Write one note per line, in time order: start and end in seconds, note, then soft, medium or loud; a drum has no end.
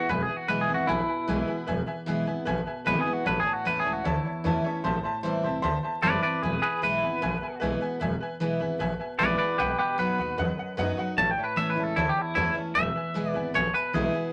0.09 0.24 E1 loud
0.09 0.84 E2 loud
0.09 0.21 B4 medium
0.09 0.22 B4 medium
0.09 0.21 E5 medium
0.09 0.22 G#5 loud
0.22 0.37 G#4 medium
0.28 0.40 B4 medium
0.28 0.41 E5 medium
0.28 0.41 G#5 medium
0.28 muted upright bass stroke medium
0.37 0.49 F#4 medium
0.48 0.64 B1 loud
0.48 0.67 E3 loud
0.48 0.68 G#3 medium
0.48 0.68 B3 medium
0.48 0.67 E4 medium
0.48 0.60 B4 medium
0.48 0.61 B4 medium
0.48 0.61 E5 medium
0.48 0.61 G#5 medium
0.61 0.74 G#4 medium
0.68 0.83 G#1 loud
0.68 0.88 B3 soft
0.68 0.87 E4 medium
0.68 0.80 B4 medium
0.68 0.80 E5 medium
0.68 0.81 G#5 medium
0.74 0.88 F#4 medium
0.87 1.03 A1 loud
0.87 1.64 B2 medium
0.87 1.65 E4 loud
0.87 1.00 B4 loud
0.87 1.00 E5 loud
0.87 1.01 G#5 loud
1.08 1.20 B4 medium
1.08 1.20 E5 medium
1.08 1.21 G#5 medium
1.08 muted upright bass stroke medium
1.27 1.43 B1 medium
1.27 1.47 E3 loud
1.27 1.47 G#3 loud
1.27 1.48 B3 loud
1.27 1.46 E4 medium
1.27 1.39 B4 medium
1.27 1.40 E5 medium
1.27 1.40 G#5 loud
1.47 1.68 B3 soft
1.47 1.67 E4 medium
1.47 1.59 B4 medium
1.47 1.60 E5 medium
1.47 1.60 G#5 medium
1.47 muted upright bass stroke medium
1.66 1.83 E1 medium
1.66 2.43 E2 medium
1.66 1.79 B4 loud
1.66 1.80 E5 loud
1.66 1.80 G#5 loud
1.86 1.99 B4 medium
1.86 1.99 E5 medium
1.86 1.99 G#5 loud
1.86 muted upright bass stroke medium
2.06 2.22 B1 medium
2.06 2.26 E3 medium
2.06 2.26 G#3 medium
2.06 2.27 B3 medium
2.06 2.25 E4 loud
2.06 2.19 B4 medium
2.06 2.19 E5 medium
2.06 2.20 G#5 medium
2.25 2.42 G#1 medium
2.25 2.47 B3 soft
2.25 2.46 E4 medium
2.25 2.38 B4 medium
2.25 2.39 E5 medium
2.25 2.39 G#5 loud
2.45 2.62 A1 medium
2.45 3.22 B2 loud
2.45 2.58 B4 loud
2.45 2.58 E5 loud
2.45 2.59 G#5 loud
2.65 2.78 B4 medium
2.65 2.79 E5 medium
2.65 2.79 G#5 loud
2.65 muted upright bass stroke medium
2.85 3.01 G#1 medium
2.85 3.05 E3 medium
2.85 3.06 G#3 medium
2.85 3.06 B3 loud
2.85 3.04 E4 medium
2.85 2.98 B4 loud
2.85 3.00 B4 loud
2.85 2.98 E5 medium
2.85 2.99 G#5 loud
3.00 3.13 G#4 medium
3.05 3.26 B3 medium
3.05 3.25 E4 medium
3.05 3.18 B4 medium
3.05 3.18 E5 medium
3.05 3.19 G#5 medium
3.05 muted upright bass stroke medium
3.13 3.26 F#4 medium
3.24 3.41 A1 loud
3.24 4.01 A2 medium
3.24 3.39 B4 loud
3.24 3.37 C#5 medium
3.24 3.38 E5 medium
3.24 3.38 A5 loud
3.40 3.53 G#4 medium
3.45 3.57 C#5 medium
3.45 3.58 E5 medium
3.45 3.58 A5 medium
3.45 muted upright bass stroke medium
3.53 3.66 F#4 medium
3.64 3.81 E2 loud
3.64 3.85 E3 medium
3.64 3.85 A3 medium
3.64 3.85 C#4 medium
3.64 3.84 E4 loud
3.64 3.79 B4 medium
3.64 3.77 C#5 medium
3.64 3.78 E5 medium
3.64 3.78 A5 medium
3.80 3.93 G#4 medium
3.84 4.01 C#2 loud
3.84 4.05 C#4 soft
3.84 4.04 E4 medium
3.84 3.97 C#5 medium
3.84 3.98 E5 medium
3.84 3.98 A5 medium
3.93 4.06 F#4 medium
4.04 4.20 D2 medium
4.04 4.81 E2 medium
4.04 4.82 E4 loud
4.04 4.17 C#5 loud
4.04 4.17 E5 loud
4.04 4.18 A5 loud
4.25 4.37 C#5 medium
4.25 4.37 E5 medium
4.25 4.38 A5 medium
4.25 muted upright bass stroke medium
4.44 4.60 E2 medium
4.44 4.64 E3 medium
4.44 4.64 A3 medium
4.44 4.64 C#4 medium
4.44 4.63 E4 medium
4.44 4.57 C#5 medium
4.44 4.57 E5 medium
4.44 4.58 A5 loud
4.64 4.85 C#4 medium
4.64 4.84 E4 medium
4.64 4.76 C#5 loud
4.64 4.77 E5 medium
4.64 4.77 A5 medium
4.64 muted upright bass stroke medium
4.84 4.99 A1 loud
4.84 5.60 A2 medium
4.84 4.96 C5 loud
4.84 4.96 E5 loud
4.84 4.97 A5 loud
5.03 5.16 C5 medium
5.03 5.16 E5 medium
5.03 5.17 A5 loud
5.03 muted upright bass stroke medium
5.23 5.39 E2 loud
5.23 5.43 E3 loud
5.23 5.43 G3 medium
5.23 5.44 C4 loud
5.23 5.42 E4 medium
5.23 5.36 C5 medium
5.23 5.36 E5 medium
5.23 5.36 A5 medium
5.43 5.59 C2 medium
5.43 5.64 C4 soft
5.43 5.63 E4 medium
5.43 5.56 C5 medium
5.43 5.56 E5 medium
5.43 5.57 A5 medium
5.62 5.78 D2 medium
5.62 5.75 C5 loud
5.62 5.75 E5 loud
5.62 5.76 A5 loud
5.83 5.95 C5 medium
5.83 5.96 E5 medium
5.83 5.96 A5 loud
5.83 muted upright bass stroke medium
6.02 6.18 F#1 loud
6.02 6.22 E3 loud
6.02 6.22 G3 medium
6.02 6.23 C4 loud
6.02 6.21 E4 medium
6.02 6.21 B4 medium
6.02 6.15 C5 loud
6.02 6.22 D5 loud
6.02 6.15 E5 medium
6.02 6.16 A5 loud
6.23 6.43 C4 medium
6.23 6.42 E4 medium
6.23 6.42 B4 medium
6.23 6.35 C5 medium
6.23 6.43 D5 medium
6.23 6.36 E5 medium
6.23 6.36 A5 medium
6.23 muted upright bass stroke medium
6.42 6.58 E1 medium
6.42 7.18 E2 medium
6.42 6.61 G#4 medium
6.42 6.61 B4 loud
6.42 6.55 B4 medium
6.42 6.55 E5 medium
6.42 6.56 G#5 loud
6.62 6.81 G#4 medium
6.62 6.82 B4 medium
6.62 6.75 B4 medium
6.62 6.75 E5 medium
6.62 6.75 G#5 medium
6.62 muted upright bass stroke medium
6.82 6.97 B1 medium
6.82 7.01 E3 medium
6.82 7.02 G#3 medium
6.82 7.02 B3 medium
6.82 7.01 E4 loud
6.82 6.94 B4 medium
6.82 7.60 B4 medium
6.82 6.94 E5 medium
6.82 6.95 G#5 medium
7.02 7.17 G#1 medium
7.02 7.22 B3 soft
7.02 7.21 E4 medium
7.02 7.14 B4 medium
7.02 7.14 E5 medium
7.02 7.15 G#5 medium
7.21 7.37 A1 medium
7.21 7.97 B2 medium
7.21 7.33 B4 loud
7.21 7.34 E5 loud
7.21 7.34 G#5 loud
7.41 7.53 B4 medium
7.41 7.54 E5 medium
7.41 7.54 G#5 medium
7.41 muted upright bass stroke medium
7.60 7.77 B1 medium
7.60 7.80 E3 medium
7.60 7.81 G#3 medium
7.60 7.81 B3 medium
7.60 7.80 E4 medium
7.60 7.73 B4 loud
7.60 7.73 E5 loud
7.60 7.74 G#5 loud
7.80 8.01 B3 medium
7.80 8.00 E4 medium
7.80 7.93 B4 medium
7.80 7.93 E5 medium
7.80 7.94 G#5 loud
7.80 muted upright bass stroke medium
8.00 8.16 E1 loud
8.00 8.76 E2 medium
8.00 8.12 B4 loud
8.00 8.13 E5 loud
8.00 8.13 G#5 loud
8.21 8.33 B4 loud
8.21 8.33 E5 medium
8.21 8.34 G#5 loud
8.21 muted upright bass stroke medium
8.40 8.55 B1 medium
8.40 8.59 E3 loud
8.40 8.60 G#3 medium
8.40 8.60 B3 loud
8.40 8.58 E4 medium
8.40 8.52 B4 medium
8.40 8.53 E5 medium
8.40 8.53 G#5 medium
8.60 8.75 G#1 medium
8.60 8.80 B3 soft
8.60 8.79 E4 medium
8.60 8.72 B4 medium
8.60 8.73 E5 medium
8.60 8.73 G#5 medium
8.79 8.95 A1 medium
8.79 9.55 B2 medium
8.79 8.91 B4 loud
8.79 8.92 E5 loud
8.79 8.92 G#5 loud
8.99 9.11 B4 medium
8.99 9.12 E5 medium
8.99 9.12 G#5 medium
8.99 muted upright bass stroke medium
9.19 9.35 A#1 medium
9.19 9.38 E3 medium
9.19 9.39 G#3 medium
9.19 9.39 B3 loud
9.19 9.38 E4 loud
9.19 9.37 B4 medium
9.19 9.31 B4 medium
9.19 9.37 D5 medium
9.19 9.32 E5 medium
9.19 9.32 G#5 loud
9.38 9.59 B3 soft
9.38 9.58 E4 medium
9.38 9.57 B4 medium
9.38 9.51 B4 medium
9.38 9.58 D5 medium
9.38 9.51 E5 medium
9.38 9.52 G#5 medium
9.58 9.74 B1 medium
9.58 10.35 B2 medium
9.58 9.77 G4 medium
9.58 9.71 B4 medium
9.58 9.78 B4 loud
9.58 9.71 D#5 medium
9.58 9.72 F#5 loud
9.78 9.97 G4 medium
9.78 9.91 B4 medium
9.78 9.98 B4 medium
9.78 9.91 D#5 medium
9.78 9.91 F#5 medium
9.78 muted upright bass stroke medium
9.98 10.14 F#2 medium
9.98 10.17 F#3 medium
9.98 10.18 B3 medium
9.98 10.18 D#4 medium
9.98 10.17 F#4 medium
9.98 10.10 B4 medium
9.98 10.76 B4 medium
9.98 10.11 D#5 medium
9.98 10.11 F#5 medium
10.18 10.33 D#2 medium
10.18 10.38 D#4 soft
10.18 10.37 F#4 medium
10.18 10.30 B4 medium
10.18 10.31 D#5 medium
10.18 10.31 F#5 medium
10.38 10.53 E2 medium
10.38 11.13 F#2 medium
10.38 10.50 B4 loud
10.38 10.50 D#5 loud
10.38 10.51 F#5 loud
10.57 10.70 B4 medium
10.57 10.70 D#5 medium
10.57 10.70 F#5 medium
10.57 muted upright bass stroke medium
10.77 10.93 F#2 medium
10.77 10.96 F#3 medium
10.77 10.97 B3 medium
10.77 10.97 D#4 loud
10.77 10.96 F#4 loud
10.77 10.89 B4 loud
10.77 10.90 D#5 medium
10.77 10.90 F#5 loud
10.97 11.17 D#4 soft
10.97 11.16 F#4 medium
10.97 11.09 B4 medium
10.97 11.10 D#5 medium
10.97 11.10 F#5 loud
10.97 muted upright bass stroke medium
11.17 11.32 A1 loud
11.17 11.93 A2 medium
11.17 11.29 C#5 loud
11.17 11.30 E5 medium
11.17 11.31 A5 loud
11.17 11.30 A5 loud
11.31 11.44 G5 medium
11.37 11.49 C#5 medium
11.37 11.50 E5 medium
11.37 11.50 A5 medium
11.37 muted upright bass stroke medium
11.44 11.57 B4 medium
11.56 11.72 E2 medium
11.56 11.76 E3 medium
11.56 11.76 A3 medium
11.56 11.76 C#4 loud
11.56 11.75 E4 medium
11.56 11.69 C#5 medium
11.56 11.70 E5 loud
11.56 11.69 E5 medium
11.56 11.70 A5 medium
11.70 11.83 B4 medium
11.76 11.91 C#2 loud
11.76 11.96 C#4 soft
11.76 11.95 E4 medium
11.76 11.89 C#5 medium
11.76 11.89 E5 medium
11.76 11.90 A5 medium
11.83 11.96 A4 medium
11.96 12.11 D2 medium
11.96 12.72 E2 medium
11.96 12.09 E4 medium
11.96 12.08 C#5 loud
11.96 12.09 E5 loud
11.96 12.09 A5 loud
12.09 12.21 G4 medium
12.16 12.28 C#5 medium
12.16 12.28 E5 medium
12.16 12.29 A5 medium
12.16 muted upright bass stroke medium
12.21 12.34 E4 medium
12.35 12.51 E2 loud
12.35 12.54 E3 medium
12.35 12.55 A3 medium
12.35 12.55 C#4 medium
12.35 12.55 E4 loud
12.35 12.53 E4 loud
12.35 12.48 C#5 loud
12.35 12.48 E5 medium
12.35 12.48 A5 loud
12.55 12.75 C#4 medium
12.55 12.74 E4 medium
12.55 12.68 C#5 medium
12.55 12.68 E5 medium
12.55 12.69 A5 medium
12.55 muted upright bass stroke medium
12.75 12.91 E1 loud
12.75 13.50 E2 loud
12.75 12.87 B4 loud
12.75 13.29 E5 loud
12.75 12.88 E5 medium
12.75 12.88 G#5 medium
12.95 13.07 B4 medium
12.95 13.07 E5 medium
12.95 13.08 G#5 medium
12.95 muted upright bass stroke medium
13.14 13.30 B1 medium
13.14 13.34 E3 medium
13.14 13.34 G#3 loud
13.14 13.34 B3 loud
13.14 13.32 E4 loud
13.14 13.27 B4 medium
13.14 13.27 E5 medium
13.14 13.27 G#5 medium
13.29 13.52 D5 loud
13.34 13.50 G#1 medium
13.34 13.54 B3 medium
13.34 13.53 E4 medium
13.34 13.46 B4 medium
13.34 13.47 E5 medium
13.34 13.47 G#5 loud
13.54 13.70 A1 medium
13.54 14.30 B2 medium
13.54 13.66 B4 loud
13.54 13.74 C#5 medium
13.54 13.67 E5 loud
13.54 13.67 G#5 loud
13.74 13.86 B4 medium
13.74 13.94 B4 medium
13.74 13.86 E5 medium
13.74 13.87 G#5 medium
13.74 muted upright bass stroke medium
13.93 14.09 B1 loud
13.93 14.13 E3 medium
13.93 14.13 G#3 medium
13.93 14.13 B3 medium
13.93 14.12 E4 loud
13.93 14.33 G#4 medium
13.93 14.06 B4 medium
13.93 14.06 E5 medium
13.93 14.06 G#5 loud
14.13 14.33 B3 medium
14.13 14.33 E4 medium
14.13 14.25 B4 medium
14.13 14.26 E5 medium
14.13 14.26 G#5 medium
14.13 muted upright bass stroke medium